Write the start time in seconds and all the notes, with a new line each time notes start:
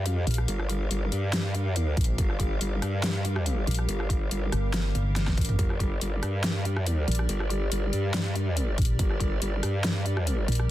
Already playing: G3 G4 A#4 F5
0.01 F#2
0.06 closed hi-hat
0.27 A#1, closed hi-hat
0.31 closed hi-hat
0.34 closed hi-hat
0.38 cross-stick
0.48 G1, closed hi-hat
0.60 cross-stick
0.69 closed hi-hat
0.91 G1, closed hi-hat
1.12 G2, closed hi-hat
1.33 snare, closed hi-hat
1.55 closed hi-hat
1.76 closed hi-hat
1.97 A#1, kick, closed hi-hat
2.01 closed hi-hat
2.04 closed hi-hat
2.18 G1, kick, closed hi-hat
2.30 cross-stick
2.40 kick, closed hi-hat
2.61 G1, closed hi-hat
2.82 G2, cross-stick, closed hi-hat
3.03 snare, closed hi-hat
3.25 closed hi-hat
3.36 cross-stick
3.46 closed hi-hat
3.67 A#1, closed hi-hat
3.71 closed hi-hat
3.74 closed hi-hat
3.79 cross-stick
3.89 G1, closed hi-hat
4.00 cross-stick
4.10 kick, closed hi-hat
4.31 G1, closed hi-hat
4.52 G1, cross-stick, closed hi-hat
4.74 snare, closed hi-hat
4.95 G1, closed hi-hat
5.16 snare, closed hi-hat
5.28 kick, snare
5.38 A1, kick, closed hi-hat
5.41 closed hi-hat
5.45 closed hi-hat
5.49 mid tom
5.59 G1 D5, kick, closed hi-hat
5.70 cross-stick
5.80 kick, closed hi-hat
6.01 G1, closed hi-hat
6.23 G2, cross-stick, closed hi-hat
6.44 snare, closed hi-hat
6.65 closed hi-hat
6.77 cross-stick
6.86 closed hi-hat
7.08 A#1, closed hi-hat
7.12 closed hi-hat
7.15 closed hi-hat
7.19 cross-stick
7.29 G1, closed hi-hat
7.40 cross-stick
7.50 closed hi-hat
7.72 G1, closed hi-hat
7.93 G2, closed hi-hat
8.14 snare, closed hi-hat
8.35 closed hi-hat
8.57 closed hi-hat
8.78 A#1, kick, closed hi-hat
8.82 closed hi-hat
8.85 closed hi-hat
8.99 G1, kick, closed hi-hat
9.11 cross-stick
9.20 kick, closed hi-hat
9.42 G1, closed hi-hat
9.63 G2, cross-stick, closed hi-hat
9.84 snare, closed hi-hat
10.06 closed hi-hat
10.17 cross-stick
10.27 closed hi-hat
10.48 A#1, closed hi-hat
10.52 closed hi-hat
10.55 closed hi-hat
10.60 cross-stick